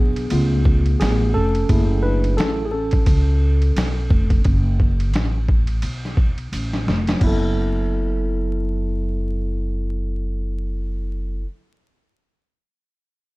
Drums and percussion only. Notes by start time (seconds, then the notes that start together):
0.16 ride
0.30 ride
0.65 kick
0.86 ride
1.01 snare, hi-hat pedal, ride
1.55 ride
1.69 kick, ride
2.24 ride
2.38 snare, hi-hat pedal, ride
2.91 kick, ride
3.06 kick, ride
3.62 ride
3.76 snare, hi-hat pedal, ride
4.10 kick
4.30 kick, ride
4.44 kick, ride
4.80 kick
5.00 ride
5.14 snare, hi-hat pedal, ride
5.48 kick
5.67 ride
5.82 ride
6.05 snare
6.17 kick
6.38 ride
6.53 hi-hat pedal, ride
6.73 snare
6.88 snare
7.07 snare, ride
7.21 kick, crash